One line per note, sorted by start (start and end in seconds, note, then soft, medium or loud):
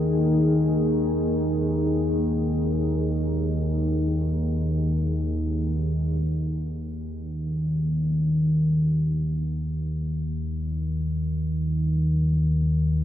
0.00 6.22 D#2 medium
0.00 6.20 D#3 medium
0.00 6.21 D#3 medium
0.00 6.22 A#3 medium
0.00 6.21 D#4 medium
0.00 6.20 G#4 medium
6.22 13.04 D#2 medium
6.22 13.04 D#3 medium